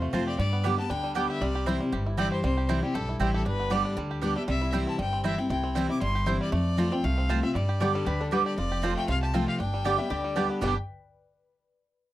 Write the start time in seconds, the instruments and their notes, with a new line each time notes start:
Already playing: steel-string acoustic guitar C3, five-string banjo C4 F4
0.02 five-string banjo A3
0.13 upright bass F2, steel-string acoustic guitar F3 A3 C4 F4, mandolin C4 F4 C5 A5, five-string banjo C4, fiddle C5
0.27 five-string banjo G4, fiddle D5
0.39 upright bass G2, steel-string acoustic guitar G2, five-string banjo G3, fiddle D5
0.53 five-string banjo B3
0.64 steel-string acoustic guitar D3 G3 B3 G4, five-string banjo G3, mandolin B3 G4 D5 G5
0.78 five-string banjo B3, steel-string acoustic guitar B3 G4, fiddle A5
0.90 upright bass D2, steel-string acoustic guitar D3, five-string banjo D4, fiddle G5
1.04 five-string banjo G3
1.15 steel-string acoustic guitar D3 G3 B3 G4, mandolin B3 G4 D5 G5, five-string banjo B3, fiddle G5
1.29 five-string banjo G4, fiddle E5
1.41 upright bass C2, steel-string acoustic guitar C3, five-string banjo G3, fiddle D5
1.55 five-string banjo G4
1.66 steel-string acoustic guitar E3 G3 C4 E4, mandolin C4 E4 C5 G5, five-string banjo E4, fiddle C5
1.80 five-string banjo G3, steel-string acoustic guitar C4 E4
1.92 upright bass G1, steel-string acoustic guitar G2, five-string banjo G4
2.06 five-string banjo E4
2.17 steel-string acoustic guitar E3 G3 C4 E4, five-string banjo G3, mandolin C4 E4 C5 G5, fiddle D5
2.32 five-string banjo G4, fiddle C5
2.44 upright bass C2, steel-string acoustic guitar C3, five-string banjo G3, fiddle C5
2.57 five-string banjo G4
2.69 steel-string acoustic guitar E3 G3 C4 E4, mandolin C4 E4 C5 G5, five-string banjo E4
2.82 five-string banjo G3, steel-string acoustic guitar C4 E4, fiddle G4
2.94 upright bass B1, steel-string acoustic guitar G2, five-string banjo G4, fiddle A4
3.09 five-string banjo E4
3.19 upright bass A1, steel-string acoustic guitar E3 G3 C4 E4, five-string banjo G3, mandolin C4 E4 C5 G5, fiddle G4
3.34 five-string banjo G4, fiddle A4
3.46 upright bass G1, steel-string acoustic guitar G2, five-string banjo D4, fiddle B4
3.60 five-string banjo B3
3.70 steel-string acoustic guitar D3 G3 B3 G4, five-string banjo G3, mandolin B3 G4 D5 G5, fiddle D5
3.85 five-string banjo D4
3.97 upright bass D2, steel-string acoustic guitar D3, five-string banjo G3
4.11 five-string banjo G4
4.22 steel-string acoustic guitar D3 G3 B3 G4, mandolin B3 G4 D5 G5, five-string banjo D4, fiddle D5
4.35 five-string banjo G3, steel-string acoustic guitar B3 G4, fiddle E5
4.48 upright bass C2, steel-string acoustic guitar C3, five-string banjo G3, fiddle E5
4.62 five-string banjo E4
4.72 steel-string acoustic guitar E3 G3 C4 E4, five-string banjo G3, mandolin C4 E4 C5 G5
4.87 five-string banjo C4, fiddle A5
4.99 upright bass G1, steel-string acoustic guitar G2, five-string banjo G3, fiddle G5
5.13 five-string banjo C4
5.24 steel-string acoustic guitar E3 G3 C4 E4, mandolin C4 E4 C5 G5, five-string banjo E4, fiddle E5
5.38 five-string banjo C4, steel-string acoustic guitar C4 E4, fiddle G5
5.50 upright bass C2, steel-string acoustic guitar C3, five-string banjo E4, fiddle G5
5.64 five-string banjo C4
5.75 steel-string acoustic guitar E3 G3 C4 E4, five-string banjo G3, mandolin C4 E4 C5 G5
5.89 steel-string acoustic guitar C4 E4, five-string banjo E4, fiddle D6
6.01 upright bass G1, steel-string acoustic guitar G2, five-string banjo G3, fiddle C6
6.15 five-string banjo G4
6.26 steel-string acoustic guitar E3 G3 C4 E4, mandolin C4 E4 C5 G5, five-string banjo E4, fiddle C5
6.41 five-string banjo G3, fiddle D5
6.52 steel-string acoustic guitar F2, upright bass F2, five-string banjo A3, fiddle D5
6.77 steel-string acoustic guitar F3 A3 C4 F4, five-string banjo A3, mandolin C4 F4 C5 A5
6.91 five-string banjo C4, steel-string acoustic guitar C4 F4, fiddle G5
7.04 upright bass C2, steel-string acoustic guitar C3, five-string banjo A3, fiddle F5
7.18 five-string banjo C4
7.29 steel-string acoustic guitar F3 A3 C4 F4, mandolin C4 F4 C5 A5, five-string banjo F4
7.43 five-string banjo C4, steel-string acoustic guitar C4 F4, fiddle E5
7.55 upright bass G2, steel-string acoustic guitar G2, five-string banjo G3, fiddle D5
7.69 five-string banjo G4
7.80 steel-string acoustic guitar D3 G3 B3 G4, mandolin B3 G4 D5 G5, five-string banjo D4, resonator guitar played with a steel bar G4
7.95 five-string banjo G3, resonator guitar played with a steel bar A4
8.06 upright bass D2, steel-string acoustic guitar D3, five-string banjo G4, resonator guitar played with a steel bar B4
8.20 five-string banjo D4, resonator guitar played with a steel bar A4
8.31 steel-string acoustic guitar D3 G3 B3 G4, five-string banjo G3, mandolin B3 G4 D5 G5, resonator guitar played with a steel bar G4, fiddle B4
8.46 five-string banjo G4, fiddle D5
8.58 upright bass F1, steel-string acoustic guitar F2, five-string banjo F4, fiddle D5
8.72 five-string banjo G4
8.82 steel-string acoustic guitar F3 A3 C4 F4, mandolin C4 F4 C5 A5, five-string banjo F4
8.97 five-string banjo A3, fiddle G5
9.08 upright bass C2, steel-string acoustic guitar C3, five-string banjo F4, fiddle F5
9.23 five-string banjo G4, fiddle A5
9.34 steel-string acoustic guitar F3 A3 C4 F4, mandolin C4 F4 C5 A5, five-string banjo F4, fiddle G5
9.48 five-string banjo G4, fiddle F5
9.60 upright bass G1, steel-string acoustic guitar G2, five-string banjo D4, fiddle G5
9.74 five-string banjo G3
9.85 steel-string acoustic guitar D3 G3 B3 G4, mandolin B3 G4 D5 G5, five-string banjo B3, resonator guitar played with a steel bar D5
9.98 five-string banjo G3, steel-string acoustic guitar B3 G4, resonator guitar played with a steel bar E5
10.10 upright bass D2, steel-string acoustic guitar D3, five-string banjo G4, resonator guitar played with a steel bar D5
10.24 five-string banjo G3
10.36 steel-string acoustic guitar D3 G3 B3 G4, mandolin B3 G4 D5 G5, five-string banjo D4, resonator guitar played with a steel bar B4
10.50 five-string banjo B3
10.61 upright bass G1, steel-string acoustic guitar G2 B2 D3 G3 B3 G4, five-string banjo G3 B3, mandolin B3 G4 D5 G5, resonator guitar played with a steel bar B4, fiddle G5
10.65 five-string banjo D4 G4